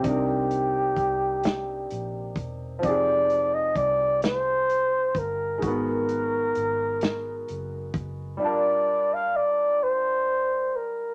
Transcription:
<<
  \new Staff \with { instrumentName = "Flugelhorn" } { \time 6/8 \key g \phrygian \tempo 4. = 43 g'2~ g'8 r8 | d''8. ees''16 d''8 c''4 bes'8 | bes'2~ bes'8 r8 | d''8. f''16 d''8 c''4 bes'8 | }
  \new Staff \with { instrumentName = "Grand piano" } { \time 6/8 \key g \phrygian <c c' d' ees' bes'>2. | <f c' ees' g' aes'>2. | <aes ces' ees' ges' bes'>2. | <g d' f' bes' a''>2. | }
  \new Staff \with { instrumentName = "Fingered electric bass" } { \clef bass \time 6/8 \key g \phrygian c,4 c,4 bes,,8 e,,8 | f,,4 c,4. g,,8 | aes,,4 aes,,4 ges,,8 ges,,8 | r2. | }
  \new DrumStaff \with { instrumentName = "Drums" } \drummode { \time 6/8 <hh bd>8 hh8 <hh bd>8 <hh sn>8 hh8 <hh bd>8 | <hh bd>8 hh8 <hh bd>8 <hh sn>8 hh8 <hh bd>8 | <hh bd>8 hh8 hh8 <hh sn>8 hh8 <hh bd>8 | r4. r4. | }
>>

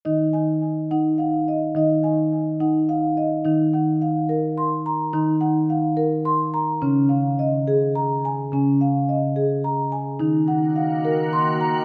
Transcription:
<<
  \new Staff \with { instrumentName = "Marimba" } { \time 6/8 \key ees \dorian \tempo 4. = 71 << { ees''8 aes''4 ges''8 f''8 ees''8 | ees''8 aes''4 ges''8 f''8 ees''8~ | ees''8 ges''8 f''4 c'''8 bes''8~ | bes''8 ges''8 f''4 c'''8 bes''8~ |
bes''8 f''8 ees''4 bes''8 aes''8~ | aes''8 f''8 ees''4 bes''8 aes''8~ | aes''8 ges''8 f''4 c'''8 bes''8 | } \\ { ees'4 r8 ees'4 r8 | ees'4 r8 ees'4 r8 | ees'4 r8 bes'4 r8 | ees'4 r8 bes'4 r8 |
des'4 r8 aes'4 r8 | des'4 r8 aes'4 r8 | ees'4 r8 bes'4 r8 | } >> }
  \new Staff \with { instrumentName = "Marimba" } { \clef bass \time 6/8 \key ees \dorian ees2. | ees2. | ees2. | ees2. |
des2. | des2. | ees2. | }
  \new Staff \with { instrumentName = "Ambient pad" } { \time 6/8 \key ees \dorian r2. | r2. | r2. | r2. |
r2. | r2. | <ees bes ges'>2. | }
>>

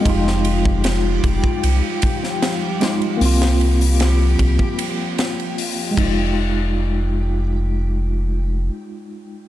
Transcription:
<<
  \new Staff \with { instrumentName = "Tine electric piano" } { \time 4/4 \key f \minor \tempo 4 = 76 <aes ees' f'>2.~ <aes ees' f'>8 <aes ees' f'>8 | <bes c' f'>2.~ <bes c' f'>8 <aes ees' f'>8~ | <aes ees' f'>1 | }
  \new Staff \with { instrumentName = "Synth texture" } { \time 4/4 \key f \minor <g g'>1~ | <g g'>1 | r1 | }
  \new Staff \with { instrumentName = "String machine" } { \time 4/4 \key f \minor <f f'>1~ | <f f'>2.~ <f f'>8 r8 | r1 | }
  \new Staff \with { instrumentName = "Analog synth bass" } { \clef bass \time 4/4 \key f \minor f,,4. f,,8 c,8 r4. | c,4. c,8 r4. f,,8~ | f,,2. r4 | }
  \new DrumStaff \with { instrumentName = "Drums" } \drummode { \time 4/4 <bd cymr>16 sn16 cymr16 bd16 <cymr sn>8 <bd cymr>16 bd16 cymr8 <bd cymr>16 sn16 <cymr sn>8 <cymr sn>16 cymr16 | hho16 <cymr sn>16 cymr16 hho16 <cymr sn>8 <bd cymr>16 bd16 cymr8 <cymr sn>16 cymr16 hho8 <cymc bd>8 | r4 r4 r4 r4 | }
>>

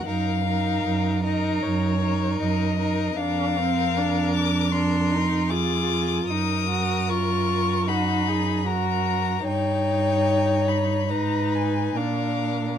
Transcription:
<<
  \new Staff \with { instrumentName = "Violin" } { \time 4/4 \key ees \minor \tempo 4 = 76 f''4. ees''8 des''4 ees''4 | f''4. d'''8 c'''4 d'''4 | ees'''4 des'''4 ces'''4 bes''4 | g''4. ces'''8 bes''8 aes''8 f''4 | }
  \new Staff \with { instrumentName = "Violin" } { \time 4/4 \key ees \minor bes'8 bes'4 bes'4 bes'4 bes'8 | bes'2. aes'4 | bes'2 ges'8 aes'8 bes'4 | des''2 ces''4 bes'4 | }
  \new Staff \with { instrumentName = "Viola" } { \time 4/4 \key ees \minor ees'8 ees'4 ees'4 ees'4 ees'8 | d'8 c'8 d'4 d'8 ees'8 f'4 | ees'8 ges'8 f'4 ees'4 ges'4 | ees'2 ees'4 d'4 | }
  \new Staff \with { instrumentName = "Cello" } { \clef bass \time 4/4 \key ees \minor ges,4 ges,4 ges,4 ges,4 | f,1 | ges,1 | g,2 aes,4 bes,4 | }
>>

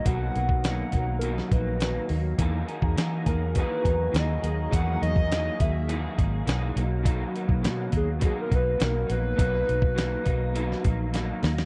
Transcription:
<<
  \new Staff \with { instrumentName = "Soft synth lead" } { \time 4/4 \key b \major \tempo 4 = 103 fis''4 fis''4 ais'8 b'4 r8 | r4. ais'8 b'4 dis''4 | fis''8 dis''4 e''4 r4. | r4. gis'8 gis'16 ais'16 b'8 ais'8 b'8~ |
b'2. r4 | }
  \new Staff \with { instrumentName = "Analog synth pad" } { \time 4/4 \key b \major <dis fis b>1 | <fis fis' gis' ais''>1~ | <fis fis' gis' ais''>2.~ <fis fis' gis' ais''>8 <fis b>8~ | <fis b>1~ |
<fis b>1 | }
  \new Staff \with { instrumentName = "Clean electric guitar" } { \time 4/4 \key b \major <b, fis ais dis'>8 <fis ais dis'>8 <b, fis ais dis'>8 <fis ais dis'>8 <b, fis ais dis'>8 <fis ais dis'>8 <b, fis ais dis'>8 <fis ais dis'>8 | <e ais dis' gis'>8 <ais dis' gis'>8 <e ais dis' gis'>8 <ais dis' gis'>8 <e ais dis' gis'>8 <ais dis' gis'>8 <e ais dis' gis'>8 <ais dis' gis'>8 | <e ais dis' gis'>8 <ais dis' gis'>8 <e ais dis' gis'>8 <ais dis' gis'>8 <e ais dis' gis'>8 <ais dis' gis'>8 <e ais dis' gis'>8 <fis ais dis'>8 | <b, fis ais dis'>8 <fis ais dis'>8 <b, fis ais dis'>8 <fis ais dis'>8 <b, fis ais dis'>8 <fis ais dis'>8 <b, fis ais dis'>8 <fis ais dis'>8 |
<b, fis ais dis'>8 <fis ais dis'>8 <b, fis ais dis'>8 <fis ais dis'>8 <b, fis ais dis'>8 <fis ais dis'>8 <b, fis ais dis'>8 <fis ais dis'>8 | }
  \new Staff \with { instrumentName = "Fingered electric bass" } { \clef bass \time 4/4 \key b \major b,,8 b,,4 b,,4 ais,,4 dis,8 | e,8 r16 e,16 e8 e,8. r16 e,8 dis,8 dis,8 | e,8 e,4 dis,4 gis,,8 b,,8 b,,8~ | b,,8 r16 b,,16 b,8 dis,8. r16 b,,8 b,,8 ais,,8 |
b,,8 b,,4 b,,4 ais,,4 dis,8 | }
  \new DrumStaff \with { instrumentName = "Drums" } \drummode { \time 4/4 <hh bd>8 hh16 bd16 <hh sn>8 <hh bd>8 hh16 sn16 <hh bd>8 <hh sn>8 hho8 | <hh bd>8 hh16 bd16 <hh sn>8 <hh bd>8 <hh bd>8 <hh bd>8 <hh sn>8 hh8 | <hh bd>8 hh16 bd16 <hh sn>8 <hh bd>8 hh8 <hh bd>8 <hh sn>8 hh8 | <hh bd>8 hh16 bd16 <hh sn>8 <hh bd>8 <hh bd>8 <hh bd>8 <hh sn>8 hh8 |
<hh bd>8 hh16 bd16 <hh sn>8 <hh bd>8 hh16 sn16 <hh bd>8 <hh sn>8 <hho sn>16 sn16 | }
>>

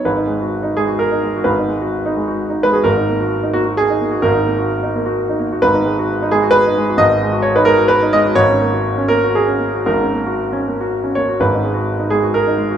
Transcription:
\new Staff \with { instrumentName = "Grand piano" } { \time 3/4 \key gis \minor \tempo 4 = 129 << { b'4. gis'8 ais'4 | b'2 r8 b'16 gis'16 | ais'4. fis'8 gis'4 | ais'2 r4 |
b'4. gis'8 b'4 | dis''4 cis''16 b'16 ais'8 b'8 dis''8 | cis''4. ais'8 gis'4 | ais'2 r8 cis''8 |
b'4. gis'8 ais'4 | } \\ { <gis,, gis,>16 dis'16 gis16 fis'8 dis'16 gis16 fis'8 dis'16 gis16 fis'16 | <gis,, gis,>16 dis'16 gis16 fis'8 dis'16 gis16 fis'8 dis'16 gis16 fis'16 | <gis,, gis,>16 dis'16 ais16 fis'8 dis'16 ais16 fis'8 dis'16 ais16 fis'16 | <gis,, gis,>16 dis'16 ais16 fis'8 dis'16 ais16 fis'8 dis'16 ais16 fis'16 |
<gis,, gis,>16 dis'16 gis16 fis'8 dis'16 gis16 fis'8 dis'16 gis16 fis'16 | <gis,, gis,>16 dis'16 gis16 fis'8 dis'16 gis16 fis'8 dis'16 gis16 fis'16 | <gis,, gis,>16 cis'16 ais16 fis'8 cis'16 ais16 fis'8 cis'16 ais16 fis'16 | <gis,, gis,>16 cis'16 ais16 fis'8 cis'16 ais16 fis'8 cis'16 ais16 fis'16 |
<gis,, gis,>16 dis'16 gis16 fis'8 dis'16 gis16 fis'8 dis'16 gis16 fis'16 | } >> }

